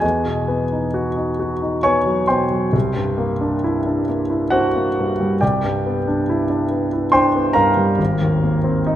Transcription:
0.00 2.71 E2 soft
0.00 1.79 G#4 soft
0.00 1.80 D#5 soft
0.00 1.82 G#5 medium
0.26 0.62 B2 soft
0.48 0.85 B3 soft
0.72 1.08 D#4 soft
0.94 1.30 F#4 soft
1.16 1.52 D#4 soft
1.39 1.75 F#4 soft
1.62 1.98 D#4 soft
1.83 2.21 B3 soft
1.83 2.26 C#5 medium
1.83 2.26 G#5 medium
1.83 2.29 C#6 medium
2.06 2.42 F#3 soft
2.27 2.65 B2 soft
2.27 4.04 C5 soft
2.27 4.04 G5 soft
2.27 4.07 C6 soft
2.51 2.74 F#3 soft
2.73 5.37 C2 soft
2.96 3.32 G2 soft
3.18 3.54 A#3 soft
3.41 3.77 D4 soft
3.64 3.99 E4 soft
3.86 4.21 D4 soft
4.09 4.44 A#3 soft
4.30 4.66 E4 soft
4.50 4.88 D4 soft
4.50 5.37 F#4 soft
4.50 5.37 C5 soft
4.50 5.41 F#5 medium
4.76 5.11 A#3 soft
4.99 5.34 G2 soft
5.20 5.42 G3 soft
5.41 7.95 C2 soft
5.41 7.11 G4 soft
5.41 7.11 D5 soft
5.41 7.11 G5 medium
5.64 5.99 G2 soft
5.86 6.20 B3 soft
6.08 6.42 D4 soft
6.29 6.64 E4 soft
6.50 6.85 D4 soft
6.71 7.06 B3 soft
6.93 7.28 E4 soft
7.12 7.48 D4 soft
7.12 7.53 C5 medium
7.12 7.53 G5 medium
7.12 7.55 C6 medium
7.36 7.69 B3 soft
7.53 7.90 G2 soft
7.53 8.96 A#4 medium
7.53 8.96 F5 soft
7.53 8.96 A#5 medium
7.77 7.98 G3 soft
7.99 8.96 G#1 soft
8.22 8.56 D#2 soft
8.44 8.78 A#3 soft
8.64 8.96 C4 soft
8.86 8.96 D#4 medium

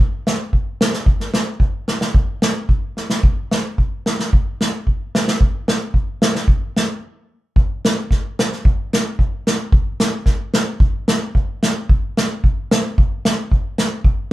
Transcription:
0.27 snare medium
0.53 kick medium
0.81 snare medium
0.93 snare medium
1.06 kick medium
1.20 snare soft
1.34 snare medium
1.60 kick medium
1.88 snare medium
2.01 snare medium
2.14 kick medium
2.42 snare medium
2.69 kick medium
2.97 snare soft
3.10 snare medium
3.23 kick medium
3.51 snare medium
3.78 kick medium
4.06 snare medium
4.19 snare medium
4.33 kick medium
4.61 snare medium
4.87 kick soft
5.15 snare medium
5.28 snare medium
5.41 kick medium
5.68 snare medium
5.94 kick medium
6.22 snare medium
6.35 snare soft
6.48 kick medium
6.77 snare medium
7.56 kick medium
7.85 snare medium
7.85 hi-hat pedal soft
8.11 kick medium
8.11 snare soft
8.39 snare medium
8.39 hi-hat pedal soft
8.53 snare soft
8.65 kick medium
8.93 snare medium
8.93 hi-hat pedal soft
9.19 kick medium
9.47 snare medium
9.47 hi-hat pedal soft
9.72 kick medium
10.00 snare medium
10.00 hi-hat pedal medium
10.26 kick medium
10.26 snare soft
10.54 snare medium
10.54 hi-hat pedal soft
10.80 kick medium
11.08 snare medium
11.08 hi-hat pedal soft
11.35 kick medium
11.63 snare medium
11.63 hi-hat pedal soft
11.89 kick medium
12.17 snare medium
12.17 hi-hat pedal soft
12.44 kick medium
12.71 snare medium
12.71 hi-hat pedal soft
12.98 kick medium
13.25 snare medium
13.25 hi-hat pedal soft
13.52 kick medium
13.78 snare medium
13.78 hi-hat pedal soft
14.04 kick medium

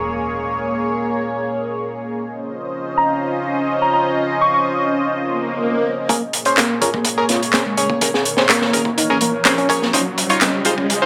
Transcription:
0.00 2.22 A#3 medium
0.00 2.22 G#4 medium
0.00 2.22 C#5 medium
0.00 impact medium
2.25 6.06 C#4 medium
2.25 6.06 F4 medium
2.25 6.06 C5 medium
2.25 6.06 D#5 medium
2.97 3.11 A#5 medium
3.82 3.89 A#5 medium
3.93 4.01 A#5 medium
4.41 4.49 C#6 medium
4.54 4.61 C#6 medium
5.13 swell medium
6.09 6.21 A#3 loud
6.09 9.90 A#3 medium
6.09 6.18 C#4 medium
6.09 8.00 G#4 medium
6.09 6.18 G#4 medium
6.09 6.18 A#4 medium
6.09 9.90 C#5 medium
6.09 kick loud
6.09 closed hi-hat medium
6.09 riser medium
6.33 closed hi-hat medium
6.45 6.58 C#4 loud
6.45 6.58 G#4 medium
6.45 6.58 C5 loud
6.45 closed hi-hat soft
6.57 6.80 A#3 loud
6.57 snare loud
6.57 clap loud
6.57 closed hi-hat medium
6.81 6.90 C#4 medium
6.81 6.88 F4 medium
6.81 6.90 G#4 medium
6.81 6.90 A#4 medium
6.81 kick medium
6.81 closed hi-hat medium
6.94 7.04 A#3 medium
6.94 kick medium
7.05 closed hi-hat medium
7.18 7.26 C#4 medium
7.18 7.26 G#4 medium
7.18 7.29 G#4 medium
7.18 7.26 A#4 loud
7.29 7.40 F4 medium
7.29 snare soft
7.29 closed hi-hat medium
7.43 closed hi-hat soft
7.53 7.65 A#3 medium
7.53 7.62 C#4 medium
7.53 7.62 G#4 medium
7.53 7.62 C5 loud
7.53 snare loud
7.53 clap loud
7.53 closed hi-hat medium
7.66 7.89 G#3 medium
7.77 7.99 C#4 medium
7.77 7.99 G#4 medium
7.77 7.99 C#5 medium
7.77 closed hi-hat medium
7.90 8.00 A#3 medium
7.90 kick medium
8.01 8.10 C#4 medium
8.01 8.10 G#4 medium
8.01 8.10 A#4 medium
8.01 9.92 A#4 medium
8.01 kick loud
8.01 closed hi-hat medium
8.14 8.25 G#4 medium
8.14 snare soft
8.25 closed hi-hat medium
8.37 8.50 C#4 loud
8.37 8.50 G#4 medium
8.37 8.50 C5 loud
8.37 snare medium
8.49 8.96 A#3 loud
8.49 snare loud
8.49 clap loud
8.49 closed hi-hat medium
8.62 snare medium
8.73 8.82 C#4 medium
8.73 8.82 G#4 medium
8.73 8.82 A#4 medium
8.73 kick medium
8.73 closed hi-hat medium
8.85 kick medium
8.98 9.08 D#4 medium
8.98 closed hi-hat medium
9.10 9.18 C#4 medium
9.10 9.18 G#4 medium
9.10 9.18 A#4 loud
9.21 9.32 A#3 medium
9.21 closed hi-hat medium
9.45 9.54 C#4 medium
9.45 9.57 C#4 medium
9.45 9.54 G#4 medium
9.45 9.54 C5 loud
9.45 snare medium
9.45 clap loud
9.45 closed hi-hat medium
9.58 9.68 C#4 medium
9.58 closed hi-hat soft
9.69 9.91 C#4 medium
9.69 9.91 G#4 medium
9.69 9.81 A#4 loud
9.69 9.91 C#5 loud
9.69 kick medium
9.69 closed hi-hat medium
9.82 9.92 A#3 medium
9.82 snare soft
9.93 10.05 C#4 loud
9.93 11.06 C#4 medium
9.93 10.02 D#4 medium
9.93 10.02 F4 medium
9.93 11.06 F4 medium
9.93 10.02 C5 medium
9.93 11.06 C5 medium
9.93 11.06 D#5 medium
9.93 kick loud
9.93 closed hi-hat medium
10.18 closed hi-hat medium
10.29 10.42 D#4 loud
10.29 10.42 F4 medium
10.29 10.42 C#5 loud
10.29 closed hi-hat soft
10.41 10.65 C#4 loud
10.41 snare loud
10.41 clap loud
10.41 closed hi-hat medium
10.65 10.74 D#4 medium
10.65 10.74 F4 medium
10.65 10.72 G#4 medium
10.65 10.74 C5 medium
10.65 kick medium
10.65 closed hi-hat medium
10.78 10.88 C#4 medium
10.78 kick medium
10.90 closed hi-hat medium
11.02 11.06 D#4 medium
11.02 11.06 F4 medium
11.02 11.06 C5 medium
11.02 11.06 C5 loud

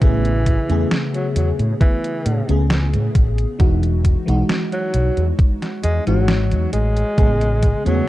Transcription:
0.01 0.56 A1 loud
0.01 0.64 C#3 medium
0.01 0.91 E3 loud
0.01 0.64 A3 medium
0.01 0.64 B3 medium
0.01 0.65 G#4 medium
0.01 kick loud
0.01 closed hi-hat medium
0.25 closed hi-hat soft
0.46 kick medium
0.46 closed hi-hat loud
0.69 0.83 E2 medium
0.69 2.43 C#3 medium
0.69 2.43 A3 medium
0.69 2.44 B3 medium
0.69 2.44 G#4 medium
0.69 closed hi-hat soft
0.91 snare loud
0.91 closed hi-hat medium
1.14 1.28 F#3 medium
1.14 closed hi-hat soft
1.36 1.50 E2 medium
1.36 1.51 F#3 medium
1.36 closed hi-hat loud
1.59 1.72 A2 medium
1.59 closed hi-hat soft
1.80 2.49 E3 loud
1.80 kick loud
1.80 closed hi-hat medium
2.04 closed hi-hat soft
2.26 2.40 A2 medium
2.26 closed hi-hat loud
2.47 2.95 C#2 medium
2.47 3.54 C#3 medium
2.47 3.54 A3 medium
2.47 3.55 B3 medium
2.47 3.56 G#4 medium
2.47 closed hi-hat soft
2.70 snare loud
2.70 closed hi-hat medium
2.94 3.07 A2 medium
2.94 closed hi-hat soft
3.15 3.44 A1 medium
3.15 kick loud
3.15 closed hi-hat loud
3.38 closed hi-hat soft
3.59 4.14 E1 loud
3.59 4.22 E3 medium
3.59 4.22 G#3 medium
3.59 4.22 D#4 medium
3.59 4.22 F#4 medium
3.59 kick loud
3.59 closed hi-hat medium
3.83 closed hi-hat soft
4.05 kick medium
4.05 closed hi-hat loud
4.26 4.41 B1 medium
4.26 6.00 E3 medium
4.26 6.01 G#3 medium
4.26 6.01 D#4 medium
4.26 6.02 F#4 medium
4.26 closed hi-hat soft
4.49 snare loud
4.49 closed hi-hat medium
4.72 5.26 F#3 loud
4.72 closed hi-hat soft
4.94 5.08 B1 medium
4.94 closed hi-hat loud
5.17 5.31 E2 medium
5.17 closed hi-hat soft
5.39 kick loud
5.39 closed hi-hat medium
5.62 snare soft
5.62 closed hi-hat soft
5.83 5.98 E2 medium
5.83 6.02 G#3 medium
5.83 closed hi-hat medium
6.06 6.53 G#1 medium
6.06 6.70 E3 medium
6.06 6.72 F#3 medium
6.06 6.70 G#3 medium
6.06 6.71 D#4 medium
6.06 6.71 F#4 medium
6.06 closed hi-hat soft
6.28 snare loud
6.28 closed hi-hat medium
6.51 6.65 E2 medium
6.51 closed hi-hat soft
6.73 7.02 A1 medium
6.73 7.81 G#3 loud
6.73 closed hi-hat loud
6.97 closed hi-hat soft
7.17 7.72 A1 loud
7.17 7.80 C#3 medium
7.17 7.80 G#3 medium
7.17 7.80 B3 medium
7.17 7.81 G#4 medium
7.17 kick loud
7.17 closed hi-hat medium
7.41 closed hi-hat soft
7.63 kick medium
7.63 closed hi-hat medium
7.84 7.99 E2 medium
7.84 8.08 C#3 medium
7.84 8.08 F#3 medium
7.84 8.08 A3 medium
7.84 8.08 B3 medium
7.84 8.08 G#4 medium
7.84 closed hi-hat soft

